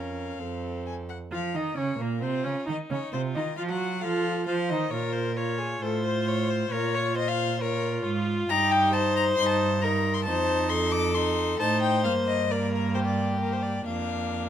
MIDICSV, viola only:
0, 0, Header, 1, 2, 480
1, 0, Start_track
1, 0, Tempo, 458716
1, 1380, Time_signature, 4, 2, 24, 8
1, 3279, Tempo, 446097
1, 12879, Tempo, 455235
1, 15447, End_track
2, 0, Start_track
2, 0, Title_t, "Viola"
2, 0, Program_c, 0, 41
2, 0, Note_on_c, 0, 61, 47
2, 407, Note_on_c, 0, 60, 52
2, 422, Note_off_c, 0, 61, 0
2, 1166, Note_off_c, 0, 60, 0
2, 1372, Note_on_c, 0, 65, 78
2, 1456, Note_off_c, 0, 65, 0
2, 1616, Note_on_c, 0, 63, 75
2, 1849, Note_off_c, 0, 63, 0
2, 1855, Note_on_c, 0, 61, 69
2, 2072, Note_off_c, 0, 61, 0
2, 2079, Note_on_c, 0, 58, 69
2, 2317, Note_off_c, 0, 58, 0
2, 2327, Note_on_c, 0, 60, 75
2, 2551, Note_on_c, 0, 61, 70
2, 2567, Note_off_c, 0, 60, 0
2, 2773, Note_off_c, 0, 61, 0
2, 2780, Note_on_c, 0, 63, 74
2, 2863, Note_off_c, 0, 63, 0
2, 3033, Note_on_c, 0, 61, 68
2, 3117, Note_off_c, 0, 61, 0
2, 3276, Note_on_c, 0, 60, 77
2, 3362, Note_off_c, 0, 60, 0
2, 3515, Note_on_c, 0, 63, 77
2, 3601, Note_off_c, 0, 63, 0
2, 3756, Note_on_c, 0, 65, 74
2, 3873, Note_off_c, 0, 65, 0
2, 3879, Note_on_c, 0, 66, 71
2, 4234, Note_off_c, 0, 66, 0
2, 4239, Note_on_c, 0, 65, 85
2, 4715, Note_off_c, 0, 65, 0
2, 4719, Note_on_c, 0, 65, 81
2, 4805, Note_off_c, 0, 65, 0
2, 4963, Note_on_c, 0, 63, 78
2, 5202, Note_off_c, 0, 63, 0
2, 5217, Note_on_c, 0, 65, 61
2, 5661, Note_off_c, 0, 65, 0
2, 5687, Note_on_c, 0, 65, 58
2, 6160, Note_off_c, 0, 65, 0
2, 6169, Note_on_c, 0, 65, 75
2, 7120, Note_off_c, 0, 65, 0
2, 7142, Note_on_c, 0, 65, 76
2, 8080, Note_off_c, 0, 65, 0
2, 8107, Note_on_c, 0, 65, 85
2, 9057, Note_on_c, 0, 63, 83
2, 9074, Note_off_c, 0, 65, 0
2, 9991, Note_off_c, 0, 63, 0
2, 9997, Note_on_c, 0, 63, 87
2, 10467, Note_off_c, 0, 63, 0
2, 10475, Note_on_c, 0, 63, 77
2, 10946, Note_off_c, 0, 63, 0
2, 10957, Note_on_c, 0, 63, 85
2, 11896, Note_off_c, 0, 63, 0
2, 11917, Note_on_c, 0, 63, 84
2, 12387, Note_off_c, 0, 63, 0
2, 12401, Note_on_c, 0, 63, 84
2, 12870, Note_on_c, 0, 58, 72
2, 12886, Note_off_c, 0, 63, 0
2, 13341, Note_off_c, 0, 58, 0
2, 13347, Note_on_c, 0, 58, 72
2, 14281, Note_off_c, 0, 58, 0
2, 14298, Note_on_c, 0, 58, 66
2, 14776, Note_off_c, 0, 58, 0
2, 14782, Note_on_c, 0, 58, 57
2, 15447, Note_off_c, 0, 58, 0
2, 15447, End_track
0, 0, End_of_file